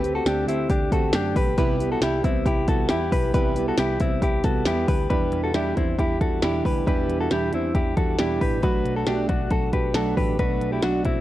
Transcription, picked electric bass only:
Already playing: D2
0.26 D2
0.47 D2
0.70 D2
0.92 D2
1.13 F#2
1.36 B1
1.58 C2
2.02 C2
2.24 C2
2.45 C2
2.68 C2
2.90 E2
3.12 B1
3.34 C2
3.78 C2
4.00 C2
4.22 C2
4.44 C2
4.65 E2
4.88 D2
5.11 E2
5.32 E2
5.54 E2
5.77 E2
5.99 E2
6.21 E2
6.42 E2
6.65 D2
6.87 E2
7.09 E2
7.31 E2
7.53 E2
7.75 E2
7.97 E2
8.20 E2
8.41 A1
8.63 B1
8.85 B1
9.07 B1
9.29 B1
9.51 B1
9.73 B1
9.94 B1
10.17 A1
10.39 B1
10.61 B1
10.83 B1
11.05 B1

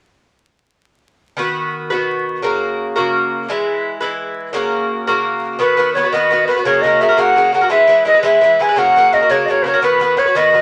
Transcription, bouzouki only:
1.37 D#3 B3 F#4 B4
1.90 D#3 B3 F#4 B4
2.42 C#3 A#3 F#4 A#4
2.96 C#3 A#3 F#4 A#4
3.48 E3 G#3 E4 B4
4.00 E3 G#3 E4 B4
4.53 C#3 A#3 F#4 A#4
5.07 C#3 A#3 F#4 A#4
5.59 D#3 B3 F#4 B4
5.77 D#3 B3 F#4 B4
5.95 D#3 B3 F#4 B4
6.03 B3 F#4 B4
6.13 D#3 B3 F#4 B4
6.31 D#3 B3 F#4 B4
6.48 D#3 B3 F#4 B4
6.57 B3 F#4 B4
6.65 C#3 A#3 F#4 A#4
6.83 C#3 A#3 F#4 A#4
7.01 C#3 A#3 F#4 A#4
7.08 A#3 F#4 A#4
7.17 C#3 A#3 F#4 A#4
7.36 C#3 A#3 F#4 A#4
7.52 C#3 A#3 F#4 A#4
7.61 A#3 F#4 A#4
7.69 E3 G#3 E4 B4
7.87 E3 G#3 E4 B4
8.05 E3 G#3 E4 B4
8.14 G#3 E4 B4
8.23 E3 G#3 E4 B4
8.41 E3 G#3 E4 B4
8.59 E3 G#3 E4 B4
8.69 G#3 E4 B4
8.76 C#3 A#3 F#4 A#4
8.96 C#3 A#3 F#4 A#4
9.12 C#3 A#3 F#4 A#4
9.21 A#3 F#4 A#4
9.29 C#3 A#3 F#4 A#4
9.48 C#3 A#3 F#4 A#4
9.64 C#3 A#3 F#4 A#4
9.74 A#3 F#4 A#4
9.82 D#3 B3 F#4 B4
10.00 D#3 B3 F#4 B4
10.17 D#3 B3 F#4 B4
10.26 B3 F#4 B4
10.35 D#3 B3 F#4 B4
10.52 D#3 B3 F#4 B4

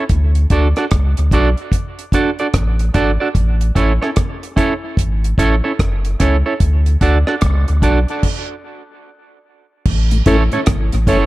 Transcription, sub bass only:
0.10 D2
0.51 D2
0.92 C#2
1.18 D2
1.32 B1
2.55 A1
2.95 G#1
3.35 A1
3.76 A1
4.98 G#1
5.39 A1
5.80 F#1
6.21 C#2
6.61 D2
7.02 D2
7.43 C#2
7.69 D2
7.83 B1
9.87 A1
10.27 A1
10.68 G#1
10.94 A1
11.08 F#1

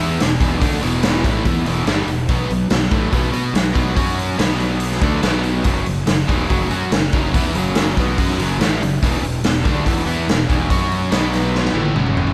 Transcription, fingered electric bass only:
0.00 E2
0.21 E1
0.41 E1
0.62 D2
0.83 E1
1.25 A1
1.46 E2
1.65 E1
1.86 G1
2.07 E1
2.30 B1
2.50 B1
2.70 B1
2.92 A1
3.13 B1
3.32 B2
3.53 B1
3.76 B1
3.97 F#2
4.39 B1
5.02 D2
5.23 B1
5.66 F#1
5.87 F#1
6.09 F#1
6.29 E1
6.51 F#1
6.72 F#2
6.91 F#1
7.13 F#1
7.34 E2
7.55 F#1
7.98 B1
8.18 F#2
8.38 F#1
8.58 A1
8.81 F#1
9.03 E1
9.21 E1
9.43 E1
9.65 D2
9.87 E1
10.07 E2
10.28 E1
10.50 E1
10.71 F#2
11.11 B1
11.74 A1
11.95 F#1

